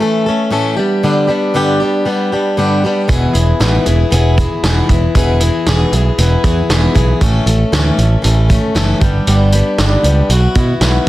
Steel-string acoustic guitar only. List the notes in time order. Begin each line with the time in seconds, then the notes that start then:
0.00 E3 A3 C#4 A4
0.26 A3 C#4 A4
0.51 A2 E3 A3 C#4 A4
0.77 G3 B3 D4 G4
1.03 G2 D3 G3 B3 D4 G4
1.27 G3 B3 D4 G4
1.54 G2 D3 G3 B3 D4 G4
1.80 G3 B3 D4 G4
2.05 G3 B3 D4 G4
2.32 G3 B3 D4 G4
2.57 G2 D3 G3 B3 D4 G4
2.84 G3 B3 D4 G4
3.08 E2 B2 E3 B3 E4 G#4
3.33 E3 B3 E4 G#4
3.60 E2 B2 E3 B3 E4 G#4
3.86 E3 B3 E4 G#4
4.11 E3 B3 E4 G#4
4.37 E3 B3 E4 G#4
4.64 E2 B2 E3 B3 E4 G#4
4.89 E3 B3 E4 G#4
5.15 E2 B2 E3 B3 E4 G#4
5.40 E3 B3 E4 G#4
5.67 E2 B2 E3 B3 E4 G#4
5.92 E3 B3 E4 G#4
6.18 E3 B3 E4 G#4
6.44 E3 B3 E4 G#4
6.70 E2 B2 E3 B3 E4 G#4
6.95 E3 B3 E4 G#4
7.21 A2 E3 A3 C#4 A4
7.46 A3 C#4 A4
7.72 A2 E3 A3 C#4 A4
7.97 A3 C#4 A4
8.22 E3 A3 C#4 A4
8.49 A3 C#4 A4
8.75 A2 E3 A3 C#4 A4
9.00 G3 B3 D4 G4
9.27 G2 D3 G3 B3 D4 G4
9.52 G3 B3 D4 G4
9.78 G2 D3 G3 B3 D4 G4
10.03 G3 B3 D4 G4
10.30 F#3 B3 E4 F#4
10.56 B3 E4 F#4
10.81 B2 F#3 B3 E4 F#4